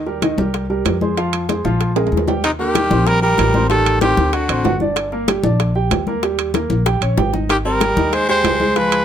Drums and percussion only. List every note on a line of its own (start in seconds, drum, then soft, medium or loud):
0.06 high bongo soft
0.06 high conga soft
0.22 high bongo medium
0.22 high conga medium
0.22 high timbale medium
0.22 low timbale medium
0.38 high bongo soft
0.38 high conga medium
0.54 high bongo medium
0.54 high conga soft
0.54 high timbale medium
0.70 high conga soft
0.85 high bongo soft
0.85 low bongo medium
0.85 high conga medium
0.85 high timbale medium
0.85 low timbale medium
1.01 high bongo soft
1.01 high conga medium
1.17 high bongo medium
1.17 high conga soft
1.17 high timbale medium
1.33 high bongo soft
1.33 high conga soft
1.33 high timbale medium
1.49 high bongo medium
1.49 high conga medium
1.49 high timbale medium
1.49 low timbale medium
1.65 high bongo soft
1.65 high conga medium
1.81 high bongo medium
1.81 high conga soft
1.81 high timbale medium
1.96 high bongo medium
1.96 high conga soft
1.96 high timbale medium
2.07 high timbale medium
2.12 high conga medium
2.17 low bongo medium
2.17 low timbale medium
2.27 low bongo medium
2.27 high conga medium
2.27 low timbale medium
2.43 high bongo medium
2.43 high conga soft
2.43 high timbale medium
2.59 high bongo soft
2.59 high conga soft
2.75 high bongo medium
2.75 high conga medium
2.75 high timbale medium
2.75 low timbale medium
2.91 high bongo soft
2.91 high conga medium
3.07 high bongo medium
3.07 high conga soft
3.07 high timbale medium
3.23 high conga soft
3.38 high bongo soft
3.38 low bongo medium
3.38 high conga medium
3.38 high timbale medium
3.38 low timbale medium
3.54 high bongo soft
3.54 high conga medium
3.70 high bongo medium
3.70 high conga soft
3.70 high timbale medium
3.86 high bongo soft
3.86 high conga soft
3.86 high timbale medium
4.01 high bongo medium
4.01 high conga medium
4.01 high timbale medium
4.01 low timbale medium
4.17 high bongo soft
4.17 high conga medium
4.33 high bongo medium
4.33 high conga soft
4.33 high timbale medium
4.49 high conga soft
4.49 high timbale medium
4.65 high bongo soft
4.65 low bongo medium
4.65 high conga medium
4.65 low timbale medium
4.80 high bongo soft
4.80 high conga medium
4.96 high bongo medium
4.96 high conga soft
4.96 high timbale medium
5.12 high bongo soft
5.12 high conga soft
5.28 high bongo medium
5.28 high conga medium
5.28 high timbale medium
5.28 low timbale medium
5.43 high bongo soft
5.43 high conga medium
5.60 high bongo medium
5.60 high conga soft
5.60 high timbale medium
5.75 high conga soft
5.91 high bongo soft
5.91 low bongo medium
5.91 high conga medium
5.91 high timbale medium
5.91 low timbale medium
6.07 high bongo soft
6.07 high conga medium
6.23 high bongo medium
6.23 high conga soft
6.23 high timbale medium
6.38 high bongo soft
6.38 high conga soft
6.38 high timbale medium
6.54 high bongo medium
6.54 high conga medium
6.54 high timbale medium
6.54 low timbale medium
6.70 high bongo soft
6.70 high conga medium
6.86 high bongo medium
6.86 high conga soft
6.86 high timbale medium
7.02 high conga soft
7.02 high timbale medium
7.17 low bongo medium
7.17 high conga medium
7.17 low timbale medium
7.34 low bongo medium
7.34 high conga medium
7.49 high bongo medium
7.49 high conga soft
7.49 high timbale medium
7.65 high bongo soft
7.65 high conga soft
7.81 high bongo medium
7.81 high conga medium
7.81 high timbale medium
7.81 low timbale medium
7.97 high bongo soft
7.97 high conga medium
8.13 high bongo medium
8.13 high conga soft
8.13 high timbale medium
8.28 high conga soft
8.44 high bongo soft
8.44 low bongo medium
8.44 high conga medium
8.44 high timbale medium
8.44 low timbale medium
8.60 high bongo soft
8.60 high conga medium
8.76 high bongo medium
8.76 high conga soft
8.76 high timbale medium
8.92 high bongo soft
8.92 high conga soft
8.92 high timbale medium